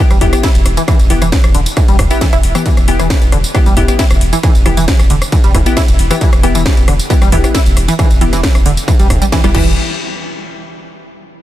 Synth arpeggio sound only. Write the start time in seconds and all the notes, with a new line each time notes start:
0.11 G3
0.21 E3
0.43 E4
0.77 E3
0.88 E3
1.10 E3
1.22 E3
1.55 D3
1.77 E3
1.88 G3
2.11 E4
2.21 E3
2.33 E4
2.55 E3
2.66 E3
2.88 E3
2.99 E3
3.32 D3
3.54 E3
3.66 G3
3.77 E3
3.99 E4
4.33 E3
4.43 E3
4.66 E3
4.77 E3
5.10 D3
5.32 E3
5.44 G3
5.55 E3
5.77 E4
6.11 E3
6.21 E3
6.43 E3
6.55 E3
6.88 D3
7.10 E3
7.22 G3
7.32 E3
7.55 E4
7.88 E3
7.99 E3
8.21 E3
8.33 E3
8.66 D3
8.88 E3
8.99 G3
9.22 G3
9.32 E3
9.44 G3
9.55 E3